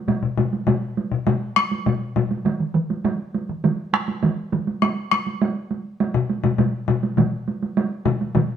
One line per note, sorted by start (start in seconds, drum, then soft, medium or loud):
0.08 taiko low-mid medium
0.08 taiko high medium
0.23 taiko low-mid medium
0.37 taiko low-mid medium
0.37 taiko high medium
0.53 taiko high soft
0.67 taiko low-mid loud
0.67 taiko high medium
0.97 taiko high medium
1.12 taiko low-mid medium
1.27 taiko low-mid loud
1.27 taiko high medium
1.56 taiko rim medium
1.56 taiko high medium
1.71 taiko high medium
1.86 taiko low-mid medium
1.86 taiko high medium
2.16 taiko low-mid medium
2.16 taiko high medium
2.31 taiko high medium
2.45 taiko mid medium
2.45 taiko high medium
2.60 taiko mid medium
2.75 taiko mid medium
2.90 taiko high medium
3.04 taiko mid medium
3.04 taiko high medium
3.35 taiko high medium
3.49 taiko mid medium
3.64 taiko mid loud
3.64 taiko high medium
3.93 taiko rim medium
3.93 taiko high medium
4.08 taiko high medium
4.23 taiko mid loud
4.23 taiko high medium
4.52 taiko mid medium
4.52 taiko high medium
4.67 taiko high medium
4.82 taiko rim medium
4.82 taiko high medium
5.11 taiko rim medium
5.11 taiko high medium
5.27 taiko high soft
5.42 taiko high medium
5.71 taiko high medium
6.00 taiko high medium
6.14 taiko low-mid loud
6.30 taiko high medium
6.44 taiko low-mid loud
6.44 taiko high medium
6.58 taiko low-mid medium
6.58 taiko high medium
6.88 taiko low-mid loud
6.88 taiko high soft
7.03 taiko high medium
7.17 taiko low-mid medium
7.17 taiko mid loud
7.17 taiko high medium
7.48 taiko high medium
7.63 taiko high soft
7.77 taiko high medium
8.06 taiko low-mid loud
8.06 taiko mid loud
8.06 taiko high medium
8.21 taiko high soft
8.35 taiko low-mid loud
8.35 taiko mid medium
8.35 taiko high medium